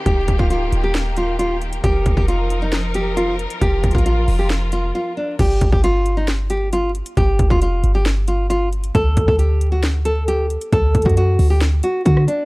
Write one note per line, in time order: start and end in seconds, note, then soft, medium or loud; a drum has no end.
0.00 1.80 D#3 medium
0.00 1.80 G4 medium
0.06 0.27 D#1 loud
0.06 1.82 A#3 medium
0.06 0.37 G4 medium
0.06 kick loud
0.06 closed hi-hat medium
0.28 0.39 D#1 loud
0.28 kick medium
0.28 closed hi-hat medium
0.39 0.71 D1 loud
0.39 0.48 F4 medium
0.39 kick loud
0.50 0.82 F4 medium
0.50 closed hi-hat medium
0.72 1.80 D#1 loud
0.72 closed hi-hat medium
0.84 0.92 G4 medium
0.95 snare loud
0.95 closed hi-hat medium
1.17 1.35 F4 medium
1.17 closed hi-hat medium
1.39 1.56 F4 medium
1.39 closed hi-hat medium
1.61 closed hi-hat soft
1.73 closed hi-hat medium
1.84 2.05 F1 loud
1.84 5.36 F3 medium
1.84 3.60 D#4 medium
1.84 2.15 G4 loud
1.84 5.36 A#4 medium
1.84 kick loud
1.84 closed hi-hat medium
2.06 2.17 F1 loud
2.06 kick loud
2.06 closed hi-hat medium
2.17 3.46 F1 loud
2.17 2.26 G4 medium
2.17 kick loud
2.28 2.59 F4 medium
2.28 closed hi-hat medium
2.50 closed hi-hat medium
2.62 2.70 D#4 medium
2.73 snare loud
2.73 closed hi-hat medium
2.94 3.12 G4 medium
2.94 closed hi-hat medium
3.17 3.34 F4 medium
3.17 closed hi-hat medium
3.39 closed hi-hat soft
3.50 closed hi-hat medium
3.61 3.83 F1 loud
3.61 5.37 F4 medium
3.61 3.93 G4 loud
3.61 kick loud
3.61 closed hi-hat medium
3.84 3.94 F1 loud
3.84 kick loud
3.84 closed hi-hat medium
3.91 4.27 A1 loud
3.91 4.03 F4 medium
3.91 kick loud
3.91 closed hi-hat medium
3.98 closed hi-hat soft
4.06 4.37 F4 medium
4.06 closed hi-hat medium
4.28 4.92 F1 loud
4.28 open hi-hat medium
4.39 4.48 G4 medium
4.50 snare loud
4.50 closed hi-hat medium
4.72 4.90 F4 medium
4.72 closed hi-hat medium
4.95 5.12 F4 medium
5.17 5.34 D4 medium
5.39 5.61 G1 loud
5.39 5.71 G4 medium
5.39 kick loud
5.39 closed hi-hat medium
5.39 crash loud
5.61 5.72 G1 loud
5.61 kick loud
5.61 closed hi-hat medium
5.72 7.02 G1 loud
5.72 5.81 G4 medium
5.72 kick loud
5.84 6.15 F4 medium
5.84 closed hi-hat medium
6.06 closed hi-hat medium
6.17 6.26 D#4 medium
6.28 snare loud
6.28 closed hi-hat medium
6.50 6.68 G4 medium
6.50 closed hi-hat medium
6.73 6.90 F4 medium
6.73 closed hi-hat medium
6.95 closed hi-hat soft
7.06 closed hi-hat medium
7.17 7.38 G1 loud
7.17 7.48 G4 loud
7.17 kick loud
7.17 closed hi-hat medium
7.39 7.50 G1 loud
7.39 kick medium
7.39 closed hi-hat medium
7.50 7.82 F1 loud
7.50 7.59 F4 medium
7.50 kick loud
7.62 7.93 F4 medium
7.62 closed hi-hat medium
7.84 8.91 G1 loud
7.84 closed hi-hat medium
7.95 8.04 G4 medium
8.06 snare loud
8.06 closed hi-hat medium
8.28 8.45 F4 medium
8.28 closed hi-hat medium
8.50 8.67 F4 medium
8.50 closed hi-hat medium
8.73 closed hi-hat soft
8.84 closed hi-hat medium
8.95 9.16 D2 loud
8.95 9.26 A4 loud
8.95 kick loud
8.95 closed hi-hat medium
9.17 9.27 D2 loud
9.17 kick medium
9.17 closed hi-hat medium
9.28 10.57 D2 loud
9.28 9.37 A4 medium
9.28 kick loud
9.39 9.70 G4 medium
9.39 closed hi-hat medium
9.61 closed hi-hat medium
9.72 9.81 F#4 medium
9.84 snare loud
9.84 closed hi-hat medium
10.05 10.23 A4 medium
10.05 closed hi-hat medium
10.28 10.45 G4 medium
10.28 closed hi-hat medium
10.50 closed hi-hat soft
10.61 closed hi-hat medium
10.72 10.94 D2 loud
10.72 11.04 A4 loud
10.72 kick loud
10.72 closed hi-hat medium
10.95 11.05 D2 loud
10.95 kick loud
10.95 closed hi-hat medium
11.02 11.38 F#2 loud
11.02 11.14 F#4 medium
11.02 kick loud
11.02 closed hi-hat medium
11.09 closed hi-hat soft
11.17 11.48 F#4 medium
11.17 closed hi-hat medium
11.39 11.82 D2 loud
11.39 open hi-hat medium
11.50 11.59 G4 medium
11.61 snare loud
11.61 closed hi-hat medium
11.83 12.01 F#4 medium
11.83 closed hi-hat medium
12.05 12.27 D3 loud
12.05 12.23 F#4 medium
12.05 kick loud
12.05 closed hi-hat medium
12.17 cross-stick medium
12.28 12.45 D4 medium
12.28 closed hi-hat medium